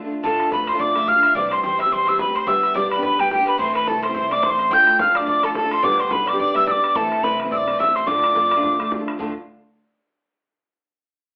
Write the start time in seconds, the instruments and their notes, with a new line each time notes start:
0.03 steel-string acoustic guitar D3 A3 D4 F4
0.23 steel-string acoustic guitar D2 A2 D3 A3 D4 F4, upright bass D2, mandolin A4, fiddle A4, tin whistle A5, bodhran
0.40 bodhran
0.50 upright bass F2, steel-string acoustic guitar D3 A3 D4 F4, fiddle B4, mandolin B4, tin whistle B5, bodhran
0.67 fiddle C5, mandolin C5, tin whistle C6, bodhran
0.74 steel-string acoustic guitar D2 A2 D3 A3 D4 F4
0.79 upright bass F2, mandolin D5, fiddle D5, tin whistle D6, bodhran
0.95 steel-string acoustic guitar D3 A3 D4 F4, fiddle E5, bodhran
1.07 upright bass B1, mandolin F5, fiddle F5, tin whistle F6, bodhran
1.15 steel-string acoustic guitar D3 A3 D4 F4
1.23 mandolin E5, bodhran
1.35 upright bass C2, steel-string acoustic guitar C3 E3 G3 C4 G4, mandolin D5, fiddle D5, tin whistle D6, bodhran
1.51 mandolin C5, fiddle C5, tin whistle C6, bodhran
1.62 upright bass E2, steel-string acoustic guitar E3 G3 C4 G4, fiddle C5, mandolin C5, tin whistle C6, bodhran
1.79 mandolin E5, fiddle E5, tin whistle E6, bodhran
1.85 steel-string acoustic guitar C3 E3 G3 C4 G4
1.92 upright bass E2, fiddle C5, mandolin C5, tin whistle C6, bodhran
2.07 steel-string acoustic guitar E3 G3 C4 G4, mandolin E5, tin whistle E6, bodhran
2.19 upright bass D2, mandolin B4, fiddle B4, tin whistle B5, bodhran
2.27 steel-string acoustic guitar G3 C4 G4
2.35 mandolin C5, fiddle C5, tin whistle C6, bodhran
2.46 upright bass G1, steel-string acoustic guitar G3 B3 D4 G4, mandolin E5, fiddle E5, tin whistle E6, bodhran
2.63 bodhran
2.74 upright bass B1, steel-string acoustic guitar G3 B3 D4 G4, mandolin D5, fiddle D5, tin whistle D6, bodhran
2.91 mandolin B4, tin whistle B5, bodhran
2.97 steel-string acoustic guitar G3 B3 D4 G4
3.02 upright bass B1, mandolin B4, fiddle B4, tin whistle B5, bodhran
3.18 steel-string acoustic guitar G3 B3 D4 G4, mandolin G4, tin whistle G5, bodhran
3.30 upright bass G1, mandolin G4, fiddle G4, tin whistle G5, bodhran
3.39 steel-string acoustic guitar B3 D4 G4
3.46 mandolin B4, fiddle B4, tin whistle B5, bodhran
3.58 upright bass A1, steel-string acoustic guitar A2 E3 A3 C4 E4, mandolin C5, fiddle C5, tin whistle C6, bodhran
3.73 mandolin B4, fiddle B4, tin whistle B5, bodhran
3.86 upright bass C2, steel-string acoustic guitar E3 A3 C4 E4, mandolin A4, fiddle A4, tin whistle A5, bodhran
4.02 mandolin C5, fiddle C5, tin whistle C6, bodhran
4.09 steel-string acoustic guitar A2 E3 A3 C4 E4
4.14 upright bass C2, mandolin C5, fiddle C5, tin whistle C6, bodhran
4.30 steel-string acoustic guitar E3 A3 C4 E4, fiddle D5, mandolin D5, tin whistle D6, bodhran
4.43 upright bass A1, mandolin C5, fiddle C5, tin whistle D6, bodhran
4.50 steel-string acoustic guitar A3 C4 E4, tin whistle C6
4.59 bodhran
4.70 steel-string acoustic guitar D2 A2 D3 A3 D4 F4, upright bass D2, mandolin G5, fiddle G5, tin whistle G6, bodhran
4.87 bodhran
4.98 upright bass F2, steel-string acoustic guitar D3 A3 D4 F4, mandolin F5, fiddle F5, tin whistle F6, bodhran
5.15 mandolin D5, fiddle D5, tin whistle D6, bodhran
5.20 steel-string acoustic guitar D2 A2 D3 A3 D4 F4
5.27 upright bass F2, mandolin D5, fiddle D5, tin whistle D6, bodhran
5.42 steel-string acoustic guitar D3 A3 D4 F4, fiddle A4, mandolin A4, tin whistle A5, bodhran
5.55 upright bass G#1, mandolin A4, fiddle A4, tin whistle A5, bodhran
5.62 steel-string acoustic guitar D3 A3 D4 F4
5.71 mandolin C5, tin whistle C6, bodhran
5.82 upright bass G1, steel-string acoustic guitar G3 B3 D4 G4, mandolin D5, fiddle D5, tin whistle D6, bodhran
5.99 mandolin C5, fiddle C5, tin whistle C6, bodhran
6.08 upright bass B1, steel-string acoustic guitar G3 B3, fiddle A4 B4, mandolin B4, bodhran
6.13 steel-string acoustic guitar D4 G4, tin whistle B5
6.26 mandolin D5, fiddle D5, tin whistle D6, bodhran
6.33 steel-string acoustic guitar G3 B3 D4 G4
6.39 upright bass B1, fiddle D5, mandolin D5, tin whistle D6, bodhran
6.54 steel-string acoustic guitar G3 B3 D4 G4, mandolin E5, fiddle E5, tin whistle E6, bodhran
6.67 upright bass G1, fiddle D5, mandolin D5, tin whistle E6, bodhran
6.71 steel-string acoustic guitar D4 G4, tin whistle D6
6.76 steel-string acoustic guitar B3
6.84 bodhran
6.95 upright bass A1, steel-string acoustic guitar A2 E3 A3 C4 E4, mandolin A4, fiddle A4, tin whistle A5, bodhran
7.12 bodhran
7.22 upright bass C2, steel-string acoustic guitar E3 A3 C4 E4, fiddle B4, mandolin B4, tin whistle B5, bodhran
7.40 bodhran
7.44 steel-string acoustic guitar A2 E3 A3 C4 E4
7.51 upright bass C2, fiddle D5, mandolin D5, tin whistle E6, bodhran
7.57 tin whistle D6
7.66 steel-string acoustic guitar E3 A3 C4 E4, bodhran
7.79 upright bass A1, fiddle E5, mandolin E5, tin whistle E6, bodhran
7.86 steel-string acoustic guitar A3 C4 E4
7.95 fiddle C5, mandolin C5, tin whistle C6, bodhran
8.06 steel-string acoustic guitar D2 A2 D3 A3 D4 F4, upright bass D2, mandolin D5, fiddle D5, tin whistle D6, bodhran
8.24 bodhran
8.34 upright bass F2, steel-string acoustic guitar D3 A3 D4 F4, bodhran
8.51 bodhran
8.56 steel-string acoustic guitar D2 A2 D3 A3 D4 F4
8.63 upright bass F2, bodhran
8.78 steel-string acoustic guitar D3 A3 D4 F4, bodhran
8.91 upright bass D2, bodhran
8.98 steel-string acoustic guitar D3 A3 D4 F4
9.08 bodhran
9.18 steel-string acoustic guitar D2 A2 D3 A3 D4 F4, upright bass D2, bodhran